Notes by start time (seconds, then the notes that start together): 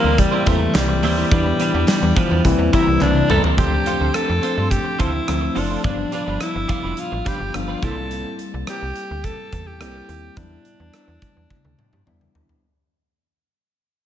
Already playing: E3 G3 A#3 C4 E4
0.03 D2 A#3 E4 G4 C5
0.17 G3, muted clean electric guitar stroke, kick, closed hi-hat
0.31 A#3 E4 G4 C5
0.46 E2 E3 G3 A3 A#3 C4 E4 G4 C5, kick, closed hi-hat
0.60 muted clean electric guitar stroke
0.74 C2 G3, muted clean electric guitar stroke, snare, clap, closed hi-hat, tambourine
0.88 muted clean electric guitar stroke
1.03 D#2 A#3 E4 G4 C5, open hi-hat
1.17 A#3 E4 G4 C5
1.31 E2 E3 G3 B3 D4 E4 G4 B4, kick, closed hi-hat
1.60 B3 D4 G4 B4, closed hi-hat
1.74 E2 B3 D4 G4 B4
1.88 G3, muted clean electric guitar stroke, snare, clap, closed hi-hat, tambourine
2.02 E2, muted clean electric guitar stroke
2.16 F3 B3 D4 G4 B4, kick, closed hi-hat
2.30 E2 B3 D4 G4 B4
2.44 C2 E3 G3 A#3 C4 E4, muted clean electric guitar stroke, kick, closed hi-hat
2.59 E2, muted clean electric guitar stroke
2.73 E3 G3 A#3 C4 E4 A#4, kick, closed hi-hat
2.87 C2, muted clean electric guitar stroke
3.01 C2 D4, muted clean electric guitar stroke, clap, high tom
3.15 muted clean electric guitar stroke
3.29 C#2 G3 C4 E4 A4 A#4, mid tom
3.43 G3 C4 E4 A#4, floor tom
3.57 D2 F3 A3 C4 D4 F4 G4 A4 C5, kick, closed hi-hat
3.85 C4 F4 A4 C5, closed hi-hat
4.00 D2 C4 F4 A4 C5
4.14 A4, muted clean electric guitar stroke, cross-stick, closed hi-hat
4.28 F2, muted clean electric guitar stroke
4.42 C4 F4 A4 C5, closed hi-hat
4.56 G2 C4 F4 A4 C5
4.71 G4, kick, closed hi-hat
4.84 muted clean electric guitar stroke
4.99 D2 C4 E4 F4 A4 C5, kick, closed hi-hat
5.13 muted clean electric guitar stroke
5.27 D2 F3 A3 C4 E4, muted clean electric guitar stroke, cross-stick, closed hi-hat
5.41 muted clean electric guitar stroke
5.55 F#1 C4 D4 F4 A4 C5, open hi-hat
5.69 C4 F4 A4 C5
5.84 G1 F3 G3 B3 D4 F4 B4, kick, closed hi-hat
6.12 G3 D4 F4 B4, closed hi-hat
6.26 G1 G3 D4 F4 B4
6.40 E4, muted clean electric guitar stroke, cross-stick, closed hi-hat
6.55 G1, muted clean electric guitar stroke
6.68 G3 D4 F4 B4, kick, closed hi-hat
6.82 F1 G3 D4 F4 B4
6.97 F4, muted clean electric guitar stroke, closed hi-hat
7.11 A1, muted clean electric guitar stroke
7.25 G3 D4 F4 G4 B4, kick, closed hi-hat
7.40 G1, muted clean electric guitar stroke
7.53 G1 F3 G3 B3 D4 F4, muted clean electric guitar stroke, cross-stick, closed hi-hat
7.68 G3 D4 F4 B4
7.82 C2 G3 A#3 C4 E4 G4 A4 C5, kick, closed hi-hat
7.96 muted clean electric guitar stroke
8.11 closed hi-hat
8.39 closed hi-hat
8.54 C2
8.67 G4, cross-stick, closed hi-hat
8.82 C2
8.96 closed hi-hat
9.11 D2
9.24 A4, kick, closed hi-hat
9.52 E2, kick, closed hi-hat
9.67 G4
9.80 C2 G3 A#3 C4 E4 G4, cross-stick, closed hi-hat
10.09 D#2, closed hi-hat
10.37 E2 F#3 B3 D4 E4, kick, closed hi-hat
10.43 G3
10.65 closed hi-hat
10.80 E2
10.93 cross-stick, closed hi-hat
11.08 E2
11.22 kick, closed hi-hat
11.37 E2
11.50 kick, high tom
11.65 D2, high tom
11.79 mid tom
11.93 G2, mid tom
12.06 E2 G3 B3 D4 E4, mid tom
12.21 mid tom
12.35 D#2, floor tom
12.49 floor tom